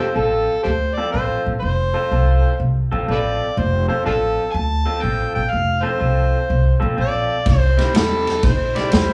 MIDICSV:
0, 0, Header, 1, 5, 480
1, 0, Start_track
1, 0, Key_signature, -1, "major"
1, 0, Tempo, 487409
1, 1594, Time_signature, 4, 2, 24, 8
1, 8993, End_track
2, 0, Start_track
2, 0, Title_t, "Harmonica"
2, 0, Program_c, 0, 22
2, 0, Note_on_c, 0, 72, 76
2, 157, Note_on_c, 0, 69, 85
2, 172, Note_off_c, 0, 72, 0
2, 619, Note_off_c, 0, 69, 0
2, 624, Note_on_c, 0, 67, 66
2, 624, Note_on_c, 0, 69, 66
2, 624, Note_on_c, 0, 72, 95
2, 693, Note_off_c, 0, 69, 0
2, 695, Note_off_c, 0, 67, 0
2, 928, Note_on_c, 0, 74, 85
2, 943, Note_off_c, 0, 72, 0
2, 1099, Note_off_c, 0, 74, 0
2, 1105, Note_on_c, 0, 72, 85
2, 1513, Note_off_c, 0, 72, 0
2, 1572, Note_on_c, 0, 71, 59
2, 1607, Note_on_c, 0, 72, 91
2, 1622, Note_off_c, 0, 71, 0
2, 2561, Note_off_c, 0, 72, 0
2, 3065, Note_on_c, 0, 69, 59
2, 3065, Note_on_c, 0, 71, 59
2, 3065, Note_on_c, 0, 74, 84
2, 3128, Note_off_c, 0, 69, 0
2, 3135, Note_off_c, 0, 71, 0
2, 3523, Note_on_c, 0, 72, 94
2, 3538, Note_off_c, 0, 74, 0
2, 3820, Note_off_c, 0, 72, 0
2, 3826, Note_on_c, 0, 72, 77
2, 3978, Note_off_c, 0, 72, 0
2, 3998, Note_on_c, 0, 62, 62
2, 3998, Note_on_c, 0, 65, 62
2, 3998, Note_on_c, 0, 69, 89
2, 4067, Note_off_c, 0, 65, 0
2, 4069, Note_off_c, 0, 62, 0
2, 4438, Note_on_c, 0, 80, 72
2, 4452, Note_off_c, 0, 69, 0
2, 4458, Note_on_c, 0, 81, 106
2, 4473, Note_off_c, 0, 80, 0
2, 4948, Note_on_c, 0, 79, 93
2, 4963, Note_off_c, 0, 81, 0
2, 5262, Note_off_c, 0, 79, 0
2, 5268, Note_on_c, 0, 79, 96
2, 5421, Note_on_c, 0, 77, 93
2, 5436, Note_off_c, 0, 79, 0
2, 5744, Note_on_c, 0, 72, 80
2, 5759, Note_off_c, 0, 77, 0
2, 6708, Note_off_c, 0, 72, 0
2, 6903, Note_on_c, 0, 74, 100
2, 7334, Note_off_c, 0, 74, 0
2, 7369, Note_on_c, 0, 72, 102
2, 7658, Note_off_c, 0, 72, 0
2, 7682, Note_on_c, 0, 72, 80
2, 7837, Note_on_c, 0, 69, 79
2, 7852, Note_off_c, 0, 72, 0
2, 8315, Note_on_c, 0, 72, 92
2, 8330, Note_off_c, 0, 69, 0
2, 8635, Note_on_c, 0, 74, 95
2, 8650, Note_off_c, 0, 72, 0
2, 8769, Note_on_c, 0, 72, 86
2, 8784, Note_off_c, 0, 74, 0
2, 8993, Note_off_c, 0, 72, 0
2, 8993, End_track
3, 0, Start_track
3, 0, Title_t, "Clean electric guitar"
3, 0, Program_c, 1, 27
3, 0, Note_on_c, 1, 53, 60
3, 0, Note_on_c, 1, 60, 78
3, 0, Note_on_c, 1, 65, 79
3, 0, Note_on_c, 1, 69, 79
3, 136, Note_off_c, 1, 53, 0
3, 138, Note_off_c, 1, 60, 0
3, 143, Note_off_c, 1, 65, 0
3, 147, Note_off_c, 1, 69, 0
3, 148, Note_on_c, 1, 53, 65
3, 150, Note_on_c, 1, 60, 74
3, 154, Note_on_c, 1, 65, 72
3, 161, Note_on_c, 1, 69, 75
3, 520, Note_off_c, 1, 53, 0
3, 521, Note_off_c, 1, 60, 0
3, 523, Note_off_c, 1, 65, 0
3, 526, Note_off_c, 1, 69, 0
3, 961, Note_on_c, 1, 69, 83
3, 962, Note_on_c, 1, 60, 73
3, 962, Note_on_c, 1, 65, 82
3, 968, Note_on_c, 1, 53, 60
3, 1105, Note_off_c, 1, 53, 0
3, 1112, Note_off_c, 1, 60, 0
3, 1112, Note_off_c, 1, 65, 0
3, 1117, Note_off_c, 1, 69, 0
3, 1117, Note_on_c, 1, 53, 68
3, 1124, Note_on_c, 1, 60, 71
3, 1124, Note_on_c, 1, 65, 71
3, 1128, Note_on_c, 1, 69, 71
3, 1484, Note_off_c, 1, 53, 0
3, 1488, Note_off_c, 1, 60, 0
3, 1488, Note_off_c, 1, 65, 0
3, 1490, Note_off_c, 1, 69, 0
3, 1910, Note_on_c, 1, 69, 82
3, 1915, Note_on_c, 1, 65, 83
3, 1920, Note_on_c, 1, 53, 68
3, 1920, Note_on_c, 1, 60, 76
3, 2066, Note_off_c, 1, 53, 0
3, 2066, Note_off_c, 1, 60, 0
3, 2072, Note_off_c, 1, 69, 0
3, 2074, Note_off_c, 1, 65, 0
3, 2078, Note_on_c, 1, 53, 65
3, 2078, Note_on_c, 1, 60, 67
3, 2084, Note_on_c, 1, 65, 71
3, 2088, Note_on_c, 1, 69, 67
3, 2445, Note_off_c, 1, 53, 0
3, 2445, Note_off_c, 1, 60, 0
3, 2448, Note_off_c, 1, 65, 0
3, 2450, Note_off_c, 1, 69, 0
3, 2872, Note_on_c, 1, 69, 86
3, 2879, Note_on_c, 1, 65, 87
3, 2882, Note_on_c, 1, 60, 83
3, 2883, Note_on_c, 1, 53, 71
3, 3019, Note_off_c, 1, 53, 0
3, 3021, Note_off_c, 1, 60, 0
3, 3024, Note_off_c, 1, 65, 0
3, 3029, Note_off_c, 1, 69, 0
3, 3030, Note_on_c, 1, 53, 67
3, 3033, Note_on_c, 1, 60, 73
3, 3036, Note_on_c, 1, 65, 79
3, 3041, Note_on_c, 1, 69, 76
3, 3401, Note_off_c, 1, 53, 0
3, 3402, Note_off_c, 1, 60, 0
3, 3404, Note_off_c, 1, 65, 0
3, 3406, Note_off_c, 1, 69, 0
3, 3826, Note_on_c, 1, 69, 85
3, 3830, Note_on_c, 1, 65, 78
3, 3837, Note_on_c, 1, 53, 72
3, 3837, Note_on_c, 1, 60, 75
3, 3968, Note_off_c, 1, 53, 0
3, 3973, Note_off_c, 1, 60, 0
3, 3977, Note_off_c, 1, 65, 0
3, 3979, Note_off_c, 1, 69, 0
3, 3979, Note_on_c, 1, 53, 72
3, 3984, Note_on_c, 1, 60, 64
3, 3989, Note_on_c, 1, 65, 73
3, 3991, Note_on_c, 1, 69, 76
3, 4355, Note_off_c, 1, 53, 0
3, 4358, Note_off_c, 1, 60, 0
3, 4360, Note_off_c, 1, 65, 0
3, 4361, Note_off_c, 1, 69, 0
3, 4782, Note_on_c, 1, 69, 85
3, 4789, Note_on_c, 1, 60, 83
3, 4789, Note_on_c, 1, 65, 79
3, 4794, Note_on_c, 1, 53, 67
3, 4927, Note_off_c, 1, 53, 0
3, 4932, Note_off_c, 1, 60, 0
3, 4935, Note_off_c, 1, 69, 0
3, 4937, Note_off_c, 1, 65, 0
3, 4939, Note_on_c, 1, 53, 67
3, 4944, Note_on_c, 1, 60, 71
3, 4946, Note_on_c, 1, 69, 82
3, 4949, Note_on_c, 1, 65, 65
3, 5314, Note_off_c, 1, 53, 0
3, 5317, Note_off_c, 1, 60, 0
3, 5318, Note_off_c, 1, 69, 0
3, 5319, Note_off_c, 1, 65, 0
3, 5739, Note_on_c, 1, 69, 84
3, 5742, Note_on_c, 1, 65, 78
3, 5743, Note_on_c, 1, 60, 82
3, 5752, Note_on_c, 1, 53, 72
3, 5883, Note_off_c, 1, 53, 0
3, 5890, Note_off_c, 1, 60, 0
3, 5894, Note_off_c, 1, 65, 0
3, 5894, Note_off_c, 1, 69, 0
3, 5895, Note_on_c, 1, 53, 65
3, 5902, Note_on_c, 1, 60, 70
3, 5906, Note_on_c, 1, 65, 74
3, 5906, Note_on_c, 1, 69, 69
3, 6272, Note_off_c, 1, 53, 0
3, 6275, Note_off_c, 1, 60, 0
3, 6278, Note_off_c, 1, 65, 0
3, 6278, Note_off_c, 1, 69, 0
3, 6695, Note_on_c, 1, 69, 82
3, 6699, Note_on_c, 1, 65, 75
3, 6701, Note_on_c, 1, 53, 63
3, 6703, Note_on_c, 1, 60, 72
3, 6837, Note_off_c, 1, 53, 0
3, 6845, Note_off_c, 1, 60, 0
3, 6849, Note_off_c, 1, 65, 0
3, 6849, Note_on_c, 1, 53, 64
3, 6857, Note_off_c, 1, 69, 0
3, 6857, Note_on_c, 1, 60, 64
3, 6861, Note_on_c, 1, 65, 65
3, 6869, Note_on_c, 1, 69, 71
3, 7229, Note_off_c, 1, 53, 0
3, 7233, Note_off_c, 1, 60, 0
3, 7235, Note_off_c, 1, 65, 0
3, 7238, Note_off_c, 1, 69, 0
3, 7659, Note_on_c, 1, 64, 83
3, 7664, Note_on_c, 1, 60, 81
3, 7665, Note_on_c, 1, 55, 77
3, 7670, Note_on_c, 1, 48, 72
3, 7807, Note_off_c, 1, 48, 0
3, 7810, Note_off_c, 1, 55, 0
3, 7813, Note_off_c, 1, 60, 0
3, 7819, Note_off_c, 1, 64, 0
3, 7819, Note_on_c, 1, 48, 64
3, 7822, Note_on_c, 1, 55, 64
3, 7825, Note_on_c, 1, 60, 74
3, 7830, Note_on_c, 1, 64, 70
3, 8193, Note_off_c, 1, 48, 0
3, 8195, Note_off_c, 1, 55, 0
3, 8196, Note_off_c, 1, 60, 0
3, 8199, Note_off_c, 1, 64, 0
3, 8619, Note_on_c, 1, 64, 78
3, 8628, Note_on_c, 1, 60, 85
3, 8632, Note_on_c, 1, 55, 73
3, 8637, Note_on_c, 1, 48, 64
3, 8771, Note_off_c, 1, 48, 0
3, 8777, Note_off_c, 1, 55, 0
3, 8781, Note_off_c, 1, 60, 0
3, 8783, Note_on_c, 1, 48, 64
3, 8784, Note_off_c, 1, 64, 0
3, 8788, Note_on_c, 1, 55, 69
3, 8792, Note_on_c, 1, 60, 62
3, 8798, Note_on_c, 1, 64, 82
3, 8993, Note_off_c, 1, 48, 0
3, 8993, Note_off_c, 1, 55, 0
3, 8993, Note_off_c, 1, 60, 0
3, 8993, Note_off_c, 1, 64, 0
3, 8993, End_track
4, 0, Start_track
4, 0, Title_t, "Upright bass"
4, 0, Program_c, 2, 32
4, 155, Note_on_c, 2, 33, 81
4, 452, Note_off_c, 2, 33, 0
4, 640, Note_on_c, 2, 38, 81
4, 936, Note_off_c, 2, 38, 0
4, 1122, Note_on_c, 2, 33, 79
4, 1318, Note_off_c, 2, 33, 0
4, 1441, Note_on_c, 2, 33, 80
4, 1538, Note_off_c, 2, 33, 0
4, 1600, Note_on_c, 2, 29, 84
4, 1896, Note_off_c, 2, 29, 0
4, 2083, Note_on_c, 2, 36, 82
4, 2378, Note_off_c, 2, 36, 0
4, 2557, Note_on_c, 2, 36, 84
4, 2755, Note_off_c, 2, 36, 0
4, 2881, Note_on_c, 2, 33, 83
4, 2978, Note_off_c, 2, 33, 0
4, 3037, Note_on_c, 2, 33, 85
4, 3334, Note_off_c, 2, 33, 0
4, 3518, Note_on_c, 2, 29, 98
4, 3814, Note_off_c, 2, 29, 0
4, 3999, Note_on_c, 2, 33, 72
4, 4294, Note_off_c, 2, 33, 0
4, 4474, Note_on_c, 2, 38, 88
4, 4771, Note_off_c, 2, 38, 0
4, 4958, Note_on_c, 2, 33, 85
4, 5155, Note_off_c, 2, 33, 0
4, 5277, Note_on_c, 2, 33, 83
4, 5375, Note_off_c, 2, 33, 0
4, 5443, Note_on_c, 2, 29, 84
4, 5737, Note_off_c, 2, 29, 0
4, 5916, Note_on_c, 2, 36, 75
4, 6212, Note_off_c, 2, 36, 0
4, 6400, Note_on_c, 2, 36, 89
4, 6596, Note_off_c, 2, 36, 0
4, 6718, Note_on_c, 2, 33, 87
4, 6815, Note_off_c, 2, 33, 0
4, 6874, Note_on_c, 2, 34, 76
4, 7170, Note_off_c, 2, 34, 0
4, 7351, Note_on_c, 2, 36, 91
4, 7648, Note_off_c, 2, 36, 0
4, 7834, Note_on_c, 2, 40, 74
4, 8130, Note_off_c, 2, 40, 0
4, 8305, Note_on_c, 2, 34, 83
4, 8603, Note_off_c, 2, 34, 0
4, 8793, Note_on_c, 2, 40, 78
4, 8990, Note_off_c, 2, 40, 0
4, 8993, End_track
5, 0, Start_track
5, 0, Title_t, "Drums"
5, 7345, Note_on_c, 9, 51, 71
5, 7346, Note_on_c, 9, 36, 98
5, 7361, Note_on_c, 9, 38, 30
5, 7443, Note_off_c, 9, 51, 0
5, 7445, Note_off_c, 9, 36, 0
5, 7460, Note_off_c, 9, 38, 0
5, 7667, Note_on_c, 9, 51, 54
5, 7684, Note_on_c, 9, 38, 35
5, 7766, Note_off_c, 9, 51, 0
5, 7782, Note_off_c, 9, 38, 0
5, 7825, Note_on_c, 9, 51, 83
5, 7842, Note_on_c, 9, 38, 118
5, 7924, Note_off_c, 9, 51, 0
5, 7941, Note_off_c, 9, 38, 0
5, 8146, Note_on_c, 9, 51, 54
5, 8163, Note_on_c, 9, 38, 30
5, 8245, Note_off_c, 9, 51, 0
5, 8262, Note_off_c, 9, 38, 0
5, 8301, Note_on_c, 9, 51, 79
5, 8304, Note_on_c, 9, 36, 110
5, 8318, Note_on_c, 9, 38, 32
5, 8399, Note_off_c, 9, 51, 0
5, 8403, Note_off_c, 9, 36, 0
5, 8416, Note_off_c, 9, 38, 0
5, 8624, Note_on_c, 9, 51, 52
5, 8641, Note_on_c, 9, 38, 31
5, 8723, Note_off_c, 9, 51, 0
5, 8739, Note_off_c, 9, 38, 0
5, 8780, Note_on_c, 9, 51, 77
5, 8797, Note_on_c, 9, 38, 112
5, 8879, Note_off_c, 9, 51, 0
5, 8896, Note_off_c, 9, 38, 0
5, 8993, End_track
0, 0, End_of_file